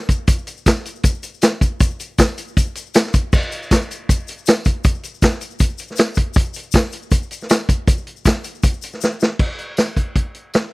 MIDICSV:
0, 0, Header, 1, 2, 480
1, 0, Start_track
1, 0, Tempo, 379747
1, 355, Time_signature, 4, 2, 24, 8
1, 13563, End_track
2, 0, Start_track
2, 0, Title_t, "Drums"
2, 108, Note_on_c, 9, 42, 80
2, 112, Note_on_c, 9, 36, 81
2, 136, Note_on_c, 9, 82, 78
2, 235, Note_off_c, 9, 42, 0
2, 238, Note_off_c, 9, 36, 0
2, 262, Note_off_c, 9, 82, 0
2, 345, Note_on_c, 9, 42, 118
2, 352, Note_on_c, 9, 36, 116
2, 355, Note_on_c, 9, 82, 85
2, 471, Note_off_c, 9, 42, 0
2, 478, Note_off_c, 9, 36, 0
2, 481, Note_off_c, 9, 82, 0
2, 484, Note_on_c, 9, 82, 28
2, 591, Note_on_c, 9, 42, 76
2, 600, Note_off_c, 9, 82, 0
2, 600, Note_on_c, 9, 82, 71
2, 717, Note_off_c, 9, 42, 0
2, 720, Note_off_c, 9, 82, 0
2, 720, Note_on_c, 9, 82, 27
2, 837, Note_on_c, 9, 36, 90
2, 838, Note_on_c, 9, 42, 108
2, 838, Note_on_c, 9, 54, 120
2, 843, Note_off_c, 9, 82, 0
2, 843, Note_on_c, 9, 82, 95
2, 853, Note_on_c, 9, 38, 118
2, 963, Note_off_c, 9, 36, 0
2, 964, Note_off_c, 9, 42, 0
2, 964, Note_off_c, 9, 54, 0
2, 969, Note_off_c, 9, 82, 0
2, 979, Note_off_c, 9, 38, 0
2, 1079, Note_on_c, 9, 42, 80
2, 1089, Note_on_c, 9, 82, 69
2, 1205, Note_off_c, 9, 42, 0
2, 1207, Note_off_c, 9, 82, 0
2, 1207, Note_on_c, 9, 82, 29
2, 1305, Note_on_c, 9, 42, 102
2, 1314, Note_on_c, 9, 36, 90
2, 1324, Note_off_c, 9, 82, 0
2, 1324, Note_on_c, 9, 82, 104
2, 1431, Note_off_c, 9, 42, 0
2, 1440, Note_off_c, 9, 36, 0
2, 1442, Note_off_c, 9, 82, 0
2, 1442, Note_on_c, 9, 82, 28
2, 1552, Note_on_c, 9, 42, 70
2, 1556, Note_off_c, 9, 82, 0
2, 1556, Note_on_c, 9, 82, 75
2, 1678, Note_off_c, 9, 42, 0
2, 1682, Note_off_c, 9, 82, 0
2, 1693, Note_on_c, 9, 82, 30
2, 1791, Note_on_c, 9, 42, 99
2, 1791, Note_on_c, 9, 54, 123
2, 1798, Note_off_c, 9, 82, 0
2, 1798, Note_on_c, 9, 82, 97
2, 1806, Note_on_c, 9, 38, 107
2, 1917, Note_off_c, 9, 42, 0
2, 1917, Note_off_c, 9, 54, 0
2, 1924, Note_off_c, 9, 82, 0
2, 1933, Note_off_c, 9, 38, 0
2, 2038, Note_on_c, 9, 36, 80
2, 2042, Note_on_c, 9, 42, 75
2, 2049, Note_on_c, 9, 82, 85
2, 2165, Note_off_c, 9, 36, 0
2, 2168, Note_off_c, 9, 42, 0
2, 2175, Note_off_c, 9, 82, 0
2, 2277, Note_on_c, 9, 42, 98
2, 2281, Note_on_c, 9, 36, 113
2, 2282, Note_on_c, 9, 82, 88
2, 2403, Note_off_c, 9, 42, 0
2, 2408, Note_off_c, 9, 36, 0
2, 2408, Note_off_c, 9, 82, 0
2, 2522, Note_on_c, 9, 42, 70
2, 2530, Note_on_c, 9, 82, 81
2, 2648, Note_off_c, 9, 42, 0
2, 2656, Note_off_c, 9, 82, 0
2, 2758, Note_on_c, 9, 42, 106
2, 2758, Note_on_c, 9, 54, 116
2, 2763, Note_on_c, 9, 36, 89
2, 2764, Note_on_c, 9, 82, 95
2, 2773, Note_on_c, 9, 38, 120
2, 2885, Note_off_c, 9, 42, 0
2, 2885, Note_off_c, 9, 54, 0
2, 2889, Note_off_c, 9, 36, 0
2, 2891, Note_off_c, 9, 82, 0
2, 2900, Note_off_c, 9, 38, 0
2, 3003, Note_on_c, 9, 42, 76
2, 3006, Note_on_c, 9, 82, 80
2, 3129, Note_off_c, 9, 42, 0
2, 3132, Note_off_c, 9, 82, 0
2, 3134, Note_on_c, 9, 82, 27
2, 3247, Note_on_c, 9, 36, 92
2, 3249, Note_on_c, 9, 42, 96
2, 3256, Note_off_c, 9, 82, 0
2, 3256, Note_on_c, 9, 82, 96
2, 3373, Note_off_c, 9, 36, 0
2, 3375, Note_off_c, 9, 42, 0
2, 3382, Note_off_c, 9, 82, 0
2, 3480, Note_on_c, 9, 42, 80
2, 3496, Note_on_c, 9, 82, 78
2, 3606, Note_off_c, 9, 42, 0
2, 3615, Note_off_c, 9, 82, 0
2, 3615, Note_on_c, 9, 82, 30
2, 3720, Note_on_c, 9, 42, 102
2, 3720, Note_on_c, 9, 54, 121
2, 3721, Note_off_c, 9, 82, 0
2, 3721, Note_on_c, 9, 82, 88
2, 3735, Note_on_c, 9, 38, 114
2, 3846, Note_off_c, 9, 42, 0
2, 3846, Note_off_c, 9, 54, 0
2, 3848, Note_off_c, 9, 82, 0
2, 3848, Note_on_c, 9, 82, 26
2, 3861, Note_off_c, 9, 38, 0
2, 3872, Note_on_c, 9, 38, 37
2, 3964, Note_off_c, 9, 82, 0
2, 3964, Note_on_c, 9, 82, 74
2, 3966, Note_on_c, 9, 42, 76
2, 3968, Note_on_c, 9, 36, 85
2, 3999, Note_off_c, 9, 38, 0
2, 4090, Note_off_c, 9, 82, 0
2, 4093, Note_off_c, 9, 42, 0
2, 4095, Note_off_c, 9, 36, 0
2, 4206, Note_on_c, 9, 49, 105
2, 4208, Note_on_c, 9, 36, 119
2, 4209, Note_on_c, 9, 82, 80
2, 4324, Note_off_c, 9, 82, 0
2, 4324, Note_on_c, 9, 82, 27
2, 4332, Note_off_c, 9, 49, 0
2, 4335, Note_off_c, 9, 36, 0
2, 4447, Note_off_c, 9, 82, 0
2, 4447, Note_on_c, 9, 42, 74
2, 4447, Note_on_c, 9, 82, 66
2, 4573, Note_off_c, 9, 42, 0
2, 4573, Note_off_c, 9, 82, 0
2, 4584, Note_on_c, 9, 82, 27
2, 4690, Note_on_c, 9, 42, 108
2, 4690, Note_on_c, 9, 54, 120
2, 4691, Note_on_c, 9, 36, 94
2, 4698, Note_off_c, 9, 82, 0
2, 4698, Note_on_c, 9, 82, 93
2, 4705, Note_on_c, 9, 38, 114
2, 4816, Note_off_c, 9, 42, 0
2, 4816, Note_off_c, 9, 54, 0
2, 4818, Note_off_c, 9, 36, 0
2, 4824, Note_off_c, 9, 82, 0
2, 4825, Note_on_c, 9, 82, 25
2, 4831, Note_off_c, 9, 38, 0
2, 4941, Note_on_c, 9, 42, 76
2, 4945, Note_off_c, 9, 82, 0
2, 4945, Note_on_c, 9, 82, 72
2, 5067, Note_off_c, 9, 42, 0
2, 5071, Note_off_c, 9, 82, 0
2, 5172, Note_on_c, 9, 36, 92
2, 5173, Note_on_c, 9, 42, 101
2, 5185, Note_on_c, 9, 82, 105
2, 5299, Note_off_c, 9, 36, 0
2, 5299, Note_off_c, 9, 42, 0
2, 5311, Note_off_c, 9, 82, 0
2, 5406, Note_on_c, 9, 82, 78
2, 5419, Note_on_c, 9, 42, 78
2, 5532, Note_off_c, 9, 82, 0
2, 5538, Note_on_c, 9, 82, 31
2, 5545, Note_off_c, 9, 42, 0
2, 5639, Note_off_c, 9, 82, 0
2, 5639, Note_on_c, 9, 82, 100
2, 5652, Note_on_c, 9, 42, 97
2, 5652, Note_on_c, 9, 54, 120
2, 5667, Note_on_c, 9, 38, 114
2, 5766, Note_off_c, 9, 82, 0
2, 5778, Note_off_c, 9, 42, 0
2, 5778, Note_off_c, 9, 54, 0
2, 5794, Note_off_c, 9, 38, 0
2, 5876, Note_on_c, 9, 82, 80
2, 5888, Note_on_c, 9, 36, 81
2, 5889, Note_on_c, 9, 42, 75
2, 6003, Note_off_c, 9, 82, 0
2, 6015, Note_off_c, 9, 36, 0
2, 6016, Note_off_c, 9, 42, 0
2, 6120, Note_on_c, 9, 42, 101
2, 6122, Note_on_c, 9, 82, 89
2, 6127, Note_on_c, 9, 36, 117
2, 6247, Note_off_c, 9, 42, 0
2, 6248, Note_off_c, 9, 82, 0
2, 6248, Note_on_c, 9, 82, 29
2, 6253, Note_off_c, 9, 36, 0
2, 6362, Note_on_c, 9, 42, 74
2, 6373, Note_off_c, 9, 82, 0
2, 6373, Note_on_c, 9, 82, 81
2, 6488, Note_off_c, 9, 42, 0
2, 6500, Note_off_c, 9, 82, 0
2, 6501, Note_on_c, 9, 82, 30
2, 6602, Note_off_c, 9, 82, 0
2, 6602, Note_on_c, 9, 36, 92
2, 6602, Note_on_c, 9, 82, 98
2, 6603, Note_on_c, 9, 42, 93
2, 6603, Note_on_c, 9, 54, 115
2, 6618, Note_on_c, 9, 38, 117
2, 6728, Note_off_c, 9, 36, 0
2, 6728, Note_off_c, 9, 82, 0
2, 6729, Note_off_c, 9, 42, 0
2, 6729, Note_off_c, 9, 54, 0
2, 6730, Note_on_c, 9, 82, 25
2, 6744, Note_off_c, 9, 38, 0
2, 6838, Note_on_c, 9, 42, 73
2, 6840, Note_off_c, 9, 82, 0
2, 6840, Note_on_c, 9, 82, 74
2, 6958, Note_off_c, 9, 82, 0
2, 6958, Note_on_c, 9, 82, 28
2, 6964, Note_off_c, 9, 42, 0
2, 7071, Note_off_c, 9, 82, 0
2, 7071, Note_on_c, 9, 82, 96
2, 7077, Note_on_c, 9, 42, 105
2, 7082, Note_on_c, 9, 36, 97
2, 7197, Note_off_c, 9, 82, 0
2, 7197, Note_on_c, 9, 82, 29
2, 7204, Note_off_c, 9, 42, 0
2, 7208, Note_off_c, 9, 36, 0
2, 7308, Note_off_c, 9, 82, 0
2, 7308, Note_on_c, 9, 82, 78
2, 7325, Note_on_c, 9, 42, 70
2, 7430, Note_off_c, 9, 82, 0
2, 7430, Note_on_c, 9, 82, 28
2, 7452, Note_off_c, 9, 42, 0
2, 7463, Note_on_c, 9, 38, 32
2, 7536, Note_off_c, 9, 82, 0
2, 7536, Note_on_c, 9, 82, 97
2, 7560, Note_on_c, 9, 42, 111
2, 7560, Note_on_c, 9, 54, 116
2, 7575, Note_off_c, 9, 38, 0
2, 7575, Note_on_c, 9, 38, 118
2, 7662, Note_off_c, 9, 82, 0
2, 7686, Note_off_c, 9, 42, 0
2, 7686, Note_off_c, 9, 54, 0
2, 7701, Note_off_c, 9, 38, 0
2, 7770, Note_on_c, 9, 82, 71
2, 7801, Note_on_c, 9, 36, 78
2, 7805, Note_on_c, 9, 42, 78
2, 7896, Note_off_c, 9, 82, 0
2, 7928, Note_off_c, 9, 36, 0
2, 7932, Note_off_c, 9, 42, 0
2, 8011, Note_on_c, 9, 82, 78
2, 8041, Note_on_c, 9, 36, 127
2, 8050, Note_on_c, 9, 42, 108
2, 8138, Note_off_c, 9, 82, 0
2, 8147, Note_on_c, 9, 82, 26
2, 8167, Note_off_c, 9, 36, 0
2, 8176, Note_off_c, 9, 42, 0
2, 8264, Note_off_c, 9, 82, 0
2, 8264, Note_on_c, 9, 82, 72
2, 8291, Note_on_c, 9, 42, 81
2, 8375, Note_off_c, 9, 82, 0
2, 8375, Note_on_c, 9, 82, 25
2, 8418, Note_off_c, 9, 42, 0
2, 8491, Note_off_c, 9, 82, 0
2, 8491, Note_on_c, 9, 82, 94
2, 8518, Note_on_c, 9, 36, 89
2, 8520, Note_on_c, 9, 42, 102
2, 8520, Note_on_c, 9, 54, 119
2, 8535, Note_on_c, 9, 38, 114
2, 8618, Note_off_c, 9, 82, 0
2, 8621, Note_on_c, 9, 82, 24
2, 8644, Note_off_c, 9, 36, 0
2, 8646, Note_off_c, 9, 42, 0
2, 8646, Note_off_c, 9, 54, 0
2, 8662, Note_off_c, 9, 38, 0
2, 8748, Note_off_c, 9, 82, 0
2, 8748, Note_on_c, 9, 82, 71
2, 8759, Note_on_c, 9, 42, 80
2, 8875, Note_off_c, 9, 82, 0
2, 8877, Note_on_c, 9, 82, 28
2, 8886, Note_off_c, 9, 42, 0
2, 8991, Note_off_c, 9, 82, 0
2, 8991, Note_on_c, 9, 82, 93
2, 8994, Note_on_c, 9, 36, 91
2, 8994, Note_on_c, 9, 42, 101
2, 9117, Note_off_c, 9, 82, 0
2, 9120, Note_off_c, 9, 36, 0
2, 9120, Note_off_c, 9, 42, 0
2, 9130, Note_on_c, 9, 82, 28
2, 9235, Note_on_c, 9, 42, 74
2, 9256, Note_off_c, 9, 82, 0
2, 9256, Note_on_c, 9, 82, 75
2, 9362, Note_off_c, 9, 42, 0
2, 9364, Note_off_c, 9, 82, 0
2, 9364, Note_on_c, 9, 82, 28
2, 9381, Note_on_c, 9, 38, 30
2, 9474, Note_on_c, 9, 42, 110
2, 9474, Note_on_c, 9, 54, 122
2, 9476, Note_off_c, 9, 82, 0
2, 9476, Note_on_c, 9, 82, 93
2, 9489, Note_off_c, 9, 38, 0
2, 9489, Note_on_c, 9, 38, 122
2, 9601, Note_off_c, 9, 42, 0
2, 9601, Note_off_c, 9, 54, 0
2, 9603, Note_off_c, 9, 82, 0
2, 9616, Note_off_c, 9, 38, 0
2, 9717, Note_on_c, 9, 36, 77
2, 9723, Note_on_c, 9, 42, 80
2, 9723, Note_on_c, 9, 82, 79
2, 9844, Note_off_c, 9, 36, 0
2, 9849, Note_off_c, 9, 82, 0
2, 9850, Note_off_c, 9, 42, 0
2, 9954, Note_on_c, 9, 36, 115
2, 9956, Note_on_c, 9, 42, 107
2, 9960, Note_on_c, 9, 82, 82
2, 10077, Note_off_c, 9, 82, 0
2, 10077, Note_on_c, 9, 82, 29
2, 10081, Note_off_c, 9, 36, 0
2, 10082, Note_off_c, 9, 42, 0
2, 10197, Note_on_c, 9, 42, 69
2, 10204, Note_off_c, 9, 82, 0
2, 10318, Note_on_c, 9, 82, 26
2, 10323, Note_off_c, 9, 42, 0
2, 10432, Note_off_c, 9, 82, 0
2, 10432, Note_on_c, 9, 82, 95
2, 10434, Note_on_c, 9, 36, 87
2, 10439, Note_on_c, 9, 42, 105
2, 10439, Note_on_c, 9, 54, 124
2, 10455, Note_on_c, 9, 38, 116
2, 10559, Note_off_c, 9, 82, 0
2, 10560, Note_off_c, 9, 36, 0
2, 10566, Note_off_c, 9, 42, 0
2, 10566, Note_off_c, 9, 54, 0
2, 10581, Note_off_c, 9, 38, 0
2, 10669, Note_on_c, 9, 42, 75
2, 10669, Note_on_c, 9, 82, 75
2, 10796, Note_off_c, 9, 42, 0
2, 10796, Note_off_c, 9, 82, 0
2, 10804, Note_on_c, 9, 82, 29
2, 10910, Note_off_c, 9, 82, 0
2, 10910, Note_on_c, 9, 82, 90
2, 10915, Note_on_c, 9, 36, 92
2, 10920, Note_on_c, 9, 42, 88
2, 11037, Note_off_c, 9, 82, 0
2, 11037, Note_on_c, 9, 82, 31
2, 11041, Note_off_c, 9, 36, 0
2, 11046, Note_off_c, 9, 42, 0
2, 11147, Note_off_c, 9, 82, 0
2, 11147, Note_on_c, 9, 82, 78
2, 11166, Note_on_c, 9, 42, 76
2, 11273, Note_off_c, 9, 82, 0
2, 11281, Note_on_c, 9, 82, 26
2, 11293, Note_off_c, 9, 42, 0
2, 11293, Note_on_c, 9, 38, 31
2, 11390, Note_off_c, 9, 82, 0
2, 11390, Note_on_c, 9, 82, 91
2, 11419, Note_off_c, 9, 38, 0
2, 11419, Note_on_c, 9, 38, 69
2, 11517, Note_off_c, 9, 82, 0
2, 11545, Note_off_c, 9, 38, 0
2, 11631, Note_on_c, 9, 82, 66
2, 11658, Note_on_c, 9, 38, 91
2, 11758, Note_off_c, 9, 82, 0
2, 11785, Note_off_c, 9, 38, 0
2, 11873, Note_on_c, 9, 57, 94
2, 11874, Note_on_c, 9, 36, 105
2, 12000, Note_off_c, 9, 36, 0
2, 12000, Note_off_c, 9, 57, 0
2, 12115, Note_on_c, 9, 42, 61
2, 12241, Note_off_c, 9, 42, 0
2, 12349, Note_on_c, 9, 42, 79
2, 12349, Note_on_c, 9, 54, 105
2, 12365, Note_on_c, 9, 38, 97
2, 12476, Note_off_c, 9, 42, 0
2, 12476, Note_off_c, 9, 54, 0
2, 12491, Note_off_c, 9, 38, 0
2, 12596, Note_on_c, 9, 36, 72
2, 12600, Note_on_c, 9, 42, 63
2, 12723, Note_off_c, 9, 36, 0
2, 12726, Note_off_c, 9, 42, 0
2, 12834, Note_on_c, 9, 42, 80
2, 12837, Note_on_c, 9, 36, 80
2, 12960, Note_off_c, 9, 42, 0
2, 12963, Note_off_c, 9, 36, 0
2, 13076, Note_on_c, 9, 42, 59
2, 13202, Note_off_c, 9, 42, 0
2, 13318, Note_on_c, 9, 42, 76
2, 13318, Note_on_c, 9, 54, 110
2, 13333, Note_on_c, 9, 38, 108
2, 13444, Note_off_c, 9, 42, 0
2, 13444, Note_off_c, 9, 54, 0
2, 13459, Note_off_c, 9, 38, 0
2, 13563, End_track
0, 0, End_of_file